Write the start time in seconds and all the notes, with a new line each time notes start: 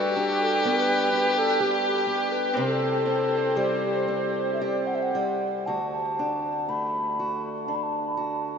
Already playing: G3 D4 G4 B4
0.16 D4
0.41 A4
0.65 B3 B4
1.13 D4
1.38 A4
1.60 G4
2.07 B3
2.32 B4
2.54 C3 G3 C4 E4 G4 A4 C5
3.06 C4
3.57 G3 G4
4.08 C4
4.54 E5
4.61 G4 D5
4.87 F#5
4.95 E5
5.02 F#5
5.15 G3
5.66 D2 F#4 A5
5.91 A5
6.19 D4
6.69 A3 B5
7.19 F#4
7.67 D4 A5
7.75 B5
7.83 A5
8.17 F#4